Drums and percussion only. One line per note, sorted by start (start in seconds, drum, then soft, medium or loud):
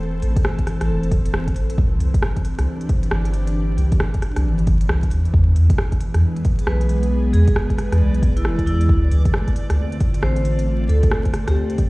0.22 open hi-hat medium
0.36 kick loud
0.36 closed hi-hat medium
0.45 cross-stick loud
0.58 kick medium
0.58 closed hi-hat soft
0.67 cross-stick medium
0.67 open hi-hat medium
0.81 cross-stick medium
0.81 closed hi-hat medium
1.03 closed hi-hat soft
1.11 kick loud
1.11 open hi-hat medium
1.26 closed hi-hat medium
1.34 cross-stick loud
1.48 kick medium
1.48 closed hi-hat soft
1.56 open hi-hat medium
1.70 closed hi-hat medium
1.78 kick loud
2.00 open hi-hat medium
2.14 kick loud
2.14 closed hi-hat medium
2.22 cross-stick loud
2.36 kick medium
2.36 closed hi-hat soft
2.45 open hi-hat medium
2.59 cross-stick medium
2.59 closed hi-hat medium
2.81 closed hi-hat soft
2.89 kick loud
2.89 open hi-hat medium
3.03 closed hi-hat medium
3.11 cross-stick loud
3.25 closed hi-hat soft
3.34 open hi-hat medium
3.47 closed hi-hat medium
3.78 open hi-hat medium
3.92 kick loud
3.92 closed hi-hat medium
4.00 cross-stick loud
4.14 kick medium
4.14 closed hi-hat soft
4.22 cross-stick medium
4.22 open hi-hat medium
4.36 cross-stick medium
4.36 closed hi-hat medium
4.59 closed hi-hat soft
4.67 kick loud
4.67 open hi-hat medium
4.81 closed hi-hat medium
4.89 cross-stick loud
5.03 kick medium
5.03 closed hi-hat soft
5.11 open hi-hat medium
5.25 open hi-hat soft
5.34 kick loud
5.56 open hi-hat medium
5.70 kick loud
5.70 closed hi-hat medium
5.78 cross-stick loud
5.92 kick medium
5.92 closed hi-hat soft
6.00 open hi-hat medium
6.14 cross-stick medium
6.14 closed hi-hat medium
6.36 closed hi-hat soft
6.45 kick loud
6.45 open hi-hat medium
6.59 closed hi-hat medium
6.67 cross-stick loud
6.81 closed hi-hat soft
6.89 open hi-hat medium
7.03 closed hi-hat medium
7.34 open hi-hat medium
7.48 kick loud
7.48 closed hi-hat medium
7.56 cross-stick loud
7.70 kick medium
7.70 closed hi-hat soft
7.78 cross-stick medium
7.78 open hi-hat medium
7.92 cross-stick medium
7.92 closed hi-hat medium
8.14 closed hi-hat soft
8.23 kick loud
8.23 open hi-hat medium
8.37 closed hi-hat medium
8.45 cross-stick loud
8.59 kick medium
8.59 closed hi-hat soft
8.67 open hi-hat medium
8.81 closed hi-hat medium
8.89 kick loud
9.11 open hi-hat medium
9.25 kick loud
9.25 closed hi-hat medium
9.34 cross-stick loud
9.48 kick medium
9.48 closed hi-hat soft
9.56 open hi-hat medium
9.70 cross-stick medium
9.70 closed hi-hat medium
9.92 closed hi-hat soft
10.00 kick loud
10.00 open hi-hat medium
10.14 closed hi-hat medium
10.23 cross-stick loud
10.36 closed hi-hat soft
10.45 open hi-hat medium
10.59 closed hi-hat medium
10.89 open hi-hat medium
11.03 kick loud
11.03 closed hi-hat medium
11.11 cross-stick loud
11.25 kick medium
11.25 closed hi-hat soft
11.34 cross-stick medium
11.34 open hi-hat medium
11.47 cross-stick medium
11.47 closed hi-hat medium
11.70 closed hi-hat soft
11.78 kick loud
11.78 open hi-hat medium